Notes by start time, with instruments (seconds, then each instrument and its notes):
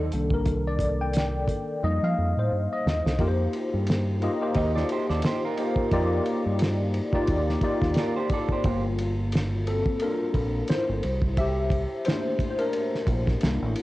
Already playing: tine electric piano D#3 F#3 C4 A4 F#5, clean electric guitar D#4 A4
0.12 fingered electric bass C2, tine electric piano D#3 A#3 D4, closed hi-hat
0.31 tine electric piano A#4, kick
0.46 kick, closed hi-hat
0.67 tine electric piano D5
0.79 kick, closed hi-hat
1.01 tine electric piano G5
1.14 snare, closed hi-hat
1.48 kick, closed hi-hat
1.83 fingered electric bass F2, tine electric piano G3 A#3 D#4 D#5
2.02 fingered electric bass F3, tine electric piano F5
2.18 fingered electric bass F2
2.37 fingered electric bass A2, tine electric piano C5
2.52 fingered electric bass G2
2.73 tine electric piano D#5
2.86 fingered electric bass D#2, snare
3.05 fingered electric bass C2, snare
3.19 fingered electric bass F2, tine electric piano A#3 D#4 F4 G4 A#4, kick, ride
3.28 tine electric piano C5
3.53 ride
3.74 fingered electric bass G2
3.87 snare, ride
4.22 tine electric piano A#3 D#4 F4 G4 D#5, ride
4.41 tine electric piano A#3 D#4 F4 G4 C5
4.54 fingered electric bass D#2, clean electric guitar A#4 D#5, kick, ride
4.75 clean electric guitar A4 D5, snare
4.89 clean electric guitar G4 C5, ride
5.10 fingered electric bass D#2, clean electric guitar A4 D5, snare
5.22 clean electric guitar C5, snare, ride
5.26 clean electric guitar G4
5.45 clean electric guitar F4 A#4
5.57 tine electric piano A#3 D#4 F4 G4 C5, ride
5.76 kick
5.91 fingered electric bass F2, tine electric piano A#3 D#4 F4 G4 D5, kick, ride
6.26 ride
6.46 fingered electric bass G2
6.59 snare, ride
6.94 ride
7.13 tine electric piano A#3 D#4 F4 G4 D5, kick
7.27 fingered electric bass D#2, kick, ride
7.49 snare
7.61 tine electric piano A#3 D#4 F4 G4 D5, kick, ride
7.82 fingered electric bass D#2, kick, snare
7.94 snare, ride
7.99 clean electric guitar F4 A#4
8.16 clean electric guitar G4 C5
8.29 clean electric guitar D5, kick, ride
8.33 clean electric guitar A4
8.49 clean electric guitar G4 C5, kick
8.64 fingered electric bass G1, tine electric piano G3 A#3 F4, kick, ride
8.98 ride
9.32 snare, ride
9.67 tine electric piano C4 A4, ride
9.86 kick
10.00 tine electric piano A#3 D4 F4 A4 A#4, ride
10.34 fingered electric bass A#1, kick, ride
10.68 tine electric piano E4 C5, muted fingered electric bass stroke, snare, ride
10.89 fingered electric bass G1
11.03 fingered electric bass C2, ride
11.22 kick
11.37 tine electric piano G4 E5, kick, ride
11.70 kick, ride
12.05 tine electric piano A3 A#3 D4 E4 C5, snare, ride
12.39 kick, ride
12.50 tine electric piano C5
12.59 tine electric piano D4 A#4, ride
12.73 ride
12.95 snare
13.07 fingered electric bass A#1, kick, ride
13.27 kick, snare
13.41 fingered electric bass C2, tine electric piano A#3 D4 E4, snare, ride
13.62 fingered electric bass A1
13.76 ride